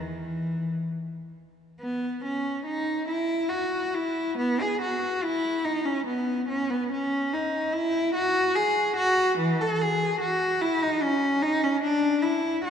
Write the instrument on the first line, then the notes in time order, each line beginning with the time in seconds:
cello
0.00 E3
1.80 B3
2.24 C#4
2.65 D#4
3.08 E4
3.49 F#4
3.94 E4
4.38 B3
4.61 G#4
4.82 F#4
5.23 E4
5.64 D#4
5.85 C#4
6.07 B3
6.49 C#4
6.70 B3
6.92 C#4
7.33 D#4
7.74 E4
8.14 F#4
8.55 G#4
8.96 F#4
9.38 E3
9.61 A4
9.81 G#4
10.21 F#4
10.61 E4
10.82 D#4
11.02 C#4
11.42 D#4
11.64 C#4
11.83 D4
12.22 E4
12.64 F#4